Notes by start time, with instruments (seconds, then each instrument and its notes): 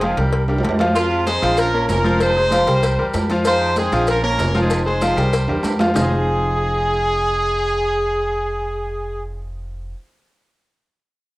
Already playing: upright bass F1, horn section C4 D#4 G#4
0.01 grand piano F3 F4 F5, cowbell, high conga, low timbale, low agogo
0.17 upright bass C2, grand piano G3 G4 A#4, cowbell
0.33 cowbell, high conga, low agogo
0.48 grand piano G3 G4 A#4, high conga, high timbale
0.58 low timbale
0.63 upright bass F2, cowbell, high conga, low agogo
0.69 low timbale
0.79 grand piano F3 F4 F5, cowbell, high conga, low timbale
0.94 grand piano F3 F4 F5, horn section G#3 C4 F4, cowbell, high conga, low agogo, maracas
1.10 high conga, low agogo
1.26 grand piano G#3 G#4 C5, horn section D#4 G#4 C5, cowbell, high conga, low timbale, maracas
1.42 upright bass A#1, grand piano F3 F4 F5, cowbell, high conga, low agogo, maracas
1.57 horn section C#4 F4 A#4, cowbell, high conga, low agogo, maracas
1.74 grand piano A#3 A#4 C#5, high conga, low agogo
1.88 upright bass F1, horn section C#4 F4 A#4, cowbell, high conga, low timbale, maracas
2.04 grand piano F3 F4 F5, high conga, maracas
2.19 horn section D#4 G#4 C5, cowbell, high conga, low agogo, maracas
2.36 grand piano G#3 G#4 C5
2.51 grand piano F3 F4 F5, cowbell, high conga, low timbale, low agogo, maracas
2.66 upright bass C2, grand piano G3 G4 A#4, cowbell, maracas
2.83 cowbell, high conga, low agogo, maracas
2.97 upright bass E2, grand piano G3 G4 A#4, high conga
3.14 upright bass F2, cowbell, high conga, low timbale, low agogo, maracas
3.29 grand piano F3 F4 F5, cowbell, high conga, maracas
3.45 grand piano F3 F4 F5, horn section D#4 G#4 C5, cowbell, high conga, low agogo, maracas
3.60 high conga, low agogo
3.76 grand piano G#3 G#4 C5, horn section C4 D#4 G#4, cowbell, high conga, low timbale, maracas
3.92 upright bass A#1, grand piano F3 F4 F5, cowbell, high conga, low agogo, maracas
4.07 horn section C#4 F4 A#4, cowbell, high conga, low agogo, maracas
4.23 grand piano A#3 A#4 C#5, horn section C#4 F4 A#4, high conga, low agogo
4.38 upright bass F1, cowbell, high conga, low timbale, maracas
4.54 grand piano F3 F4 F5, high conga, maracas
4.62 horn section C4 D#4 G#4
4.70 cowbell, high conga, low agogo, maracas
4.86 grand piano G#3 G#4 C5, horn section D#4 G#4 C5
5.01 grand piano F3 F4 F5, cowbell, high conga, low timbale, low agogo, maracas
5.16 upright bass C2, grand piano G3 G4 A#4, cowbell, maracas
5.33 cowbell, high conga, low agogo, maracas
5.48 upright bass E2, grand piano G3 G4 A#4, high conga, high timbale
5.63 upright bass F2, cowbell, high conga, high timbale, low agogo, maracas
5.79 grand piano F3 F4 F5, cowbell, high conga, low timbale, maracas
5.94 upright bass F1, grand piano F3 C4 D#4 F4 G#4 C5, horn section G#4, low bongo, low conga, low timbale, maracas